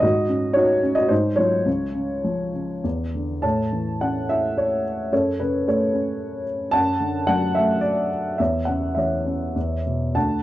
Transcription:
0.00 G#2 F#4 D#5
0.29 C#4
0.53 D#4 F#4 C#5
0.83 C#4
0.95 F#4 D#5
1.09 G#2 D#4 C5
1.36 F#3 F4 C#5
1.66 C#2
1.95 C#3
2.24 F3
2.53 C#3
2.84 E2
3.15 D3
3.42 A2 C#5 A5
3.73 E3
4.01 C#4 F#5
4.29 E4 E5
4.58 C#5
5.13 F#2 A4 C#5
5.40 C#3 B4
5.67 A3 A4 C#5
5.94 C#4
6.71 F#2 F#5 A5
7.00 D3
7.27 F#3 F#5
7.55 A3 E5
7.81 D5
8.38 E2 C#5 E5
8.65 C#3 F#5
8.95 E3 C#5 E5
9.26 C#4
9.56 E2
9.86 B2
10.15 D2 F#5 A5

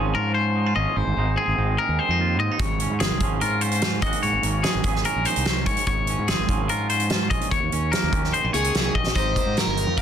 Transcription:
Already playing: G#1 G#2 F3 C4 C#4 D#4 G#4
0.15 G#2 F4 A#4
0.34 C#4 C5
0.55 G#2 D#4
0.66 F4
0.76 G#1 C#4 D#5
0.96 G#1 G#2 C5
1.07 G#1
1.17 G#1 D#4
1.37 C4 G#4
1.47 G#1
1.58 G#1 D#3 D#4
1.78 G#4 A#4
1.88 D#2
1.99 C4 C5
2.09 F2 D#4
2.20 D#2 F4
2.39 G#2 D#5
2.51 D#4
2.60 G#1 G#2 C#5, kick, closed hi-hat
2.80 C#4, closed hi-hat
2.90 G#2
3.00 G#1 C4 G#4, snare, closed hi-hat
3.11 C2
3.20 G#1 F3 C#4, kick, closed hi-hat
3.41 G#2 F4 A#4, closed hi-hat
3.61 C#4 C5, closed hi-hat
3.71 closed hi-hat
3.82 G#2 F4, snare, closed hi-hat
4.02 G#1 G#2 D#3 A#3 C#4 D#5, kick, closed hi-hat
4.07 F#4
4.13 closed hi-hat
4.23 G#2 C#4 C#5, closed hi-hat
4.33 G#1
4.43 G#1 A#3, closed hi-hat
4.63 D#3 C#4 G#4, snare, closed hi-hat
4.75 G#1
4.84 G#1 G#4, kick, closed hi-hat
4.95 snare
5.05 C#4 A#4, closed hi-hat
5.16 A#1
5.25 G#2 D#4 C5, closed hi-hat
5.36 C2, closed hi-hat
5.45 C#4, snare, closed hi-hat
5.66 G#2 C#5, kick, closed hi-hat
5.77 closed hi-hat
5.87 G#1 G#2 C#5, kick, closed hi-hat
6.07 C#4, closed hi-hat
6.19 G#2
6.28 G#1 C4 G#4, snare, closed hi-hat
6.39 G#1
6.48 G#1 F3 C#4, kick, closed hi-hat
6.69 G#2 F4 A#4, closed hi-hat
6.90 C#4 C5, closed hi-hat
7.00 closed hi-hat
7.10 G#2 F4, snare, closed hi-hat
7.30 A#1 C#4 D#5, kick, closed hi-hat
7.41 closed hi-hat
7.51 D#2 C#5, kick, closed hi-hat
7.63 D#2
7.72 D#2 C#4, closed hi-hat
7.92 A#3 A#4, snare, closed hi-hat
8.03 D#2
8.12 D#2 D#3 C#4, kick, closed hi-hat
8.24 snare
8.33 D#4 C5, closed hi-hat
8.44 A#1 F4
8.53 C#2 C#4 G#4 C#5, closed hi-hat
8.64 closed hi-hat
8.74 C2 A#2 G4, snare, closed hi-hat
8.95 A#1 C#4 D#5, kick
9.07 snare
9.16 G#1 G#2 D#3 C4 D#4 G4 C5 D#5, kick, closed hi-hat
9.36 G4, kick, closed hi-hat
9.46 G#2
9.57 D#3 A#4, snare, closed hi-hat
9.67 G1
9.77 D#4, closed hi-hat
9.87 F2
9.97 G4 A#4, kick, closed hi-hat

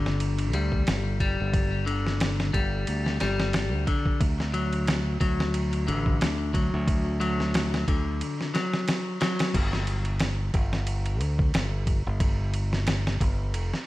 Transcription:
Already playing: G1 D3
0.06 snare
0.20 ride
0.38 ride
0.53 D2 G3, ride
0.72 kick
0.87 G1, snare, ride
1.20 G3, kick, ride
1.40 G1
1.54 kick, ride
1.86 D3, ride
2.06 snare
2.20 snare, ride
2.40 snare
2.53 G1 G3, kick, ride
2.87 D2, ride
3.06 snare
3.20 G1 G3, snare, ride
3.40 snare
3.53 snare, ride
3.73 D2
3.87 D3, kick, ride
4.06 kick
4.20 D2, kick, ride
4.40 snare
4.54 F#3, ride
4.73 ride
4.87 snare, ride
5.21 D2 F#3, kick, ride
5.40 snare
5.54 ride
5.73 ride
5.88 A1 D3, ride
6.06 kick
6.21 D2, snare, ride
6.54 F#3, kick, ride
6.74 D2
6.88 kick, ride
7.20 F#3, ride
7.40 snare
7.54 snare, ride
7.74 snare
7.88 D2 D3, kick, ride
8.21 ride
8.41 snare
8.54 F#3, snare, ride
8.74 snare
8.88 snare, ride
9.21 F#3, snare, ride
9.39 snare, ride
9.54 G1, kick, crash, ride
9.73 snare
9.87 ride
10.05 ride
10.20 snare, ride
10.54 G1, kick, ride
10.73 snare
10.87 ride
11.06 ride
11.21 D2, ride
11.39 kick
11.54 G1, snare, ride
11.87 kick, ride
12.07 G1
12.20 kick, ride
12.54 ride
12.73 snare
12.87 snare, ride
13.07 snare
13.20 G1, kick, ride
13.54 F1, ride
13.74 snare

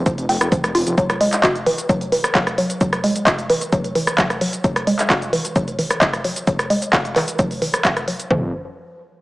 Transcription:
0.06 F3, kick, closed hi-hat, shaker
0.18 F1, closed hi-hat, shaker
0.29 F1 C4, open hi-hat
0.41 F1, cross-stick, closed hi-hat, shaker
0.52 F3, kick, closed hi-hat, shaker
0.64 F1, cross-stick, closed hi-hat, shaker
0.75 F1 F4, open hi-hat
0.87 F1, closed hi-hat, shaker
0.98 F#3, kick, closed hi-hat, shaker
1.10 cross-stick, closed hi-hat, shaker
1.21 G#3, open hi-hat
1.33 clap, closed hi-hat, shaker
1.43 F#4, kick, clap, closed hi-hat, shaker
1.55 closed hi-hat, shaker
1.66 E3, open hi-hat
1.78 closed hi-hat, shaker
1.89 F#3, kick, closed hi-hat, shaker
2.01 closed hi-hat, shaker
2.12 E3, open hi-hat
2.24 cross-stick, closed hi-hat, shaker
2.35 F#3, kick, clap, closed hi-hat, shaker
2.47 cross-stick, closed hi-hat, shaker
2.58 F#3, open hi-hat
2.70 closed hi-hat, shaker
2.81 F#3, kick, closed hi-hat, shaker
2.93 cross-stick, closed hi-hat, shaker
3.04 G#3, open hi-hat
3.16 closed hi-hat, shaker
3.27 F#4, kick, clap, closed hi-hat, shaker
3.39 closed hi-hat, shaker
3.50 E3, open hi-hat
3.61 closed hi-hat, shaker
3.72 F#3, kick, closed hi-hat, shaker
3.84 closed hi-hat, shaker
3.95 E3, open hi-hat
4.07 cross-stick, closed hi-hat, shaker
4.18 F#3, kick, clap, closed hi-hat, shaker
4.30 cross-stick, closed hi-hat, shaker
4.41 F#3, open hi-hat
4.53 closed hi-hat, shaker
4.64 F#3, kick, closed hi-hat, shaker
4.76 cross-stick, closed hi-hat, shaker
4.87 G#3, open hi-hat
4.99 clap, closed hi-hat, shaker
5.10 F#4, kick, clap, closed hi-hat, shaker
5.22 closed hi-hat, shaker
5.33 E3, open hi-hat
5.45 closed hi-hat, shaker
5.56 F#3, kick, closed hi-hat, shaker
5.68 closed hi-hat, shaker
5.79 E3, open hi-hat
5.91 cross-stick, closed hi-hat, shaker
6.02 F#3, kick, clap, closed hi-hat, shaker
6.13 cross-stick, closed hi-hat, shaker
6.24 F#3, open hi-hat
6.36 closed hi-hat, shaker
6.47 F#3, kick, closed hi-hat, shaker
6.59 cross-stick, closed hi-hat, shaker
6.70 G#3, open hi-hat
6.82 closed hi-hat, shaker
6.93 F#4, kick, clap, closed hi-hat, shaker
7.05 closed hi-hat, shaker
7.16 E3, clap, open hi-hat
7.28 closed hi-hat, shaker
7.39 F#3, kick, closed hi-hat, shaker
7.51 open hi-hat, shaker
7.62 E3, open hi-hat
7.74 cross-stick, closed hi-hat, shaker
7.85 F#3, kick, clap, closed hi-hat, shaker
7.97 cross-stick, closed hi-hat, shaker
8.08 F#3, open hi-hat
8.20 closed hi-hat, shaker
8.30 F1 F3, kick, floor tom

